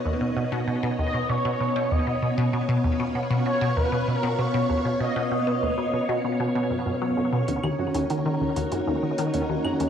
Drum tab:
HH |----------------|----------------|----------------|x--xx--xx--xx--x|
CL |----------------|----------------|----------------|-x------------x-|